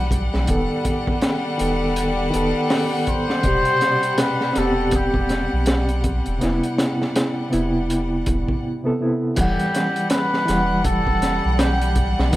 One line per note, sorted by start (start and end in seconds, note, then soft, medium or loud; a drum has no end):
0.00 0.29 B1 medium
0.00 0.44 E3 medium
0.00 0.45 G3 medium
0.00 8.63 G3 medium
0.00 0.46 F#5 loud
0.00 8.63 F#5 medium
0.11 kick medium
0.11 closed hi-hat medium
0.34 0.47 B1 medium
0.34 snare medium
0.45 0.68 E1 medium
0.45 1.54 D#3 medium
0.45 1.56 B3 medium
0.45 kick medium
0.45 closed hi-hat medium
0.50 1.57 A4 medium
0.85 kick medium
0.85 closed hi-hat medium
1.07 kick loud
1.22 snare loud
1.22 closed hi-hat medium
1.58 2.31 E1 medium
1.58 2.29 D#3 medium
1.58 2.30 B3 medium
1.58 2.31 A4 medium
1.58 closed hi-hat medium
1.96 closed hi-hat medium
2.31 2.53 E1 medium
2.31 3.40 D#3 medium
2.31 3.41 B3 medium
2.31 closed hi-hat medium
2.36 3.42 A4 loud
2.70 snare loud
2.70 open hi-hat medium
3.07 4.21 C5 loud
3.07 kick medium
3.07 closed hi-hat medium
3.30 snare medium
3.43 3.64 E1 loud
3.43 4.53 B2 medium
3.43 4.51 C3 medium
3.43 kick loud
3.43 closed hi-hat medium
3.48 4.54 G4 loud
3.65 closed hi-hat soft
3.81 snare soft
3.81 closed hi-hat medium
4.03 closed hi-hat soft
4.18 4.59 B4 loud
4.18 snare loud
4.18 closed hi-hat medium
4.41 snare medium
4.53 5.48 E1 medium
4.53 6.37 B3 medium
4.53 6.36 C4 loud
4.53 snare soft
4.53 closed hi-hat medium
4.57 6.39 G4 loud
4.57 4.97 A4 loud
4.91 kick loud
4.91 closed hi-hat medium
4.96 6.05 G4 medium
5.14 kick medium
5.29 snare soft
5.29 closed hi-hat medium
5.53 6.22 B1 medium
5.66 snare loud
5.66 closed hi-hat medium
5.89 closed hi-hat soft
6.04 kick medium
6.04 closed hi-hat medium
6.26 6.40 E1 medium
6.26 closed hi-hat soft
6.39 6.61 E1 loud
6.39 7.47 C3 medium
6.39 7.49 B3 medium
6.39 snare soft
6.39 closed hi-hat medium
6.44 7.50 E4 loud
6.63 closed hi-hat soft
6.78 snare loud
6.78 closed hi-hat medium
7.02 snare soft
7.16 snare loud
7.16 closed hi-hat loud
7.50 8.24 E1 medium
7.50 8.22 C3 medium
7.50 8.22 B3 medium
7.50 8.23 E4 medium
7.50 closed hi-hat medium
7.90 closed hi-hat medium
8.26 8.46 E1 medium
8.26 kick loud
8.26 closed hi-hat medium
8.48 kick medium
8.84 8.96 C3 medium
8.84 8.97 B3 medium
8.84 8.97 A4 medium
9.01 9.17 C3 medium
9.01 9.18 B3 medium
9.01 9.18 E4 medium
9.36 9.57 E1 loud
9.36 10.44 E3 medium
9.36 12.36 G3 medium
9.36 10.45 G3 medium
9.36 10.08 G4 loud
9.36 12.36 F#5 medium
9.36 kick loud
9.36 closed hi-hat medium
9.36 crash medium
9.41 10.47 F#5 loud
9.59 closed hi-hat soft
9.75 snare medium
9.75 closed hi-hat medium
9.96 closed hi-hat soft
10.10 10.81 B4 loud
10.10 snare loud
10.10 closed hi-hat medium
10.34 snare soft
10.46 11.40 E1 medium
10.46 12.29 E3 medium
10.46 12.30 G3 medium
10.46 snare soft
10.46 closed hi-hat medium
10.51 12.31 F#5 loud
10.84 11.61 A4 loud
10.84 kick loud
10.84 closed hi-hat medium
11.07 kick loud
11.22 snare medium
11.22 closed hi-hat medium
11.45 12.15 B1 medium
11.59 12.18 G4 medium
11.59 snare loud
11.59 closed hi-hat medium
11.81 closed hi-hat soft
11.95 kick medium
11.95 closed hi-hat medium
12.19 12.32 B1 loud
12.19 snare medium
12.31 12.36 D#3 medium
12.31 12.36 B3 medium
12.31 kick loud
12.31 closed hi-hat medium